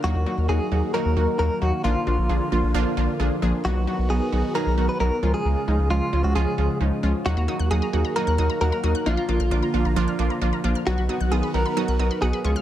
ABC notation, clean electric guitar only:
X:1
M:4/4
L:1/16
Q:1/4=133
K:Ebm
V:1 name="Clean electric guitar"
G4 A4 B4 B2 G2 | F8 z8 | ^F4 A4 B3 =B _B3 A- | A4 F3 G A4 z4 |
G4 A4 B4 B4 | F8 z8 | ^F4 A2 B6 A4 |]